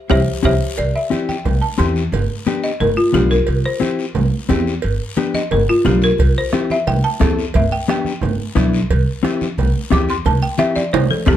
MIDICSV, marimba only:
0, 0, Header, 1, 2, 480
1, 0, Start_track
1, 0, Key_signature, 0, "major"
1, 0, Tempo, 338219
1, 1104, Time_signature, 4, 2, 24, 8
1, 16133, End_track
2, 0, Start_track
2, 0, Title_t, "Marimba"
2, 0, Program_c, 0, 12
2, 151, Note_on_c, 0, 67, 96
2, 154, Note_on_c, 0, 76, 83
2, 160, Note_on_c, 0, 72, 91
2, 302, Note_off_c, 0, 67, 0
2, 304, Note_off_c, 0, 76, 0
2, 308, Note_off_c, 0, 72, 0
2, 641, Note_on_c, 0, 76, 92
2, 643, Note_on_c, 0, 72, 90
2, 645, Note_on_c, 0, 67, 89
2, 788, Note_off_c, 0, 76, 0
2, 789, Note_off_c, 0, 72, 0
2, 790, Note_off_c, 0, 67, 0
2, 1110, Note_on_c, 0, 74, 88
2, 1340, Note_off_c, 0, 74, 0
2, 1356, Note_on_c, 0, 76, 83
2, 1816, Note_off_c, 0, 76, 0
2, 1829, Note_on_c, 0, 79, 75
2, 2292, Note_on_c, 0, 81, 81
2, 2293, Note_off_c, 0, 79, 0
2, 2531, Note_off_c, 0, 81, 0
2, 2531, Note_on_c, 0, 84, 92
2, 3003, Note_off_c, 0, 84, 0
2, 3742, Note_on_c, 0, 75, 96
2, 3976, Note_off_c, 0, 75, 0
2, 3979, Note_on_c, 0, 70, 86
2, 4214, Note_off_c, 0, 70, 0
2, 4217, Note_on_c, 0, 65, 87
2, 4453, Note_off_c, 0, 65, 0
2, 4459, Note_on_c, 0, 67, 82
2, 4695, Note_off_c, 0, 67, 0
2, 4696, Note_on_c, 0, 70, 90
2, 5166, Note_off_c, 0, 70, 0
2, 5188, Note_on_c, 0, 72, 101
2, 5419, Note_off_c, 0, 72, 0
2, 7587, Note_on_c, 0, 75, 89
2, 7820, Note_off_c, 0, 75, 0
2, 7832, Note_on_c, 0, 70, 83
2, 8062, Note_off_c, 0, 70, 0
2, 8081, Note_on_c, 0, 65, 84
2, 8306, Note_off_c, 0, 65, 0
2, 8314, Note_on_c, 0, 67, 79
2, 8543, Note_off_c, 0, 67, 0
2, 8569, Note_on_c, 0, 70, 97
2, 9024, Note_off_c, 0, 70, 0
2, 9054, Note_on_c, 0, 72, 98
2, 9273, Note_off_c, 0, 72, 0
2, 9528, Note_on_c, 0, 76, 86
2, 9751, Note_off_c, 0, 76, 0
2, 9758, Note_on_c, 0, 79, 91
2, 9986, Note_off_c, 0, 79, 0
2, 9992, Note_on_c, 0, 81, 92
2, 10688, Note_off_c, 0, 81, 0
2, 10725, Note_on_c, 0, 76, 78
2, 10949, Note_off_c, 0, 76, 0
2, 10959, Note_on_c, 0, 79, 93
2, 11186, Note_off_c, 0, 79, 0
2, 11217, Note_on_c, 0, 79, 90
2, 12599, Note_off_c, 0, 79, 0
2, 14095, Note_on_c, 0, 86, 92
2, 14313, Note_off_c, 0, 86, 0
2, 14335, Note_on_c, 0, 84, 90
2, 14553, Note_off_c, 0, 84, 0
2, 14564, Note_on_c, 0, 81, 88
2, 14788, Note_off_c, 0, 81, 0
2, 14795, Note_on_c, 0, 79, 94
2, 15023, Note_off_c, 0, 79, 0
2, 15026, Note_on_c, 0, 76, 100
2, 15258, Note_off_c, 0, 76, 0
2, 15266, Note_on_c, 0, 74, 84
2, 15498, Note_off_c, 0, 74, 0
2, 15514, Note_on_c, 0, 72, 93
2, 15742, Note_off_c, 0, 72, 0
2, 15761, Note_on_c, 0, 69, 87
2, 15986, Note_off_c, 0, 69, 0
2, 16008, Note_on_c, 0, 67, 95
2, 16013, Note_on_c, 0, 59, 84
2, 16133, Note_off_c, 0, 59, 0
2, 16133, Note_off_c, 0, 67, 0
2, 16133, End_track
0, 0, End_of_file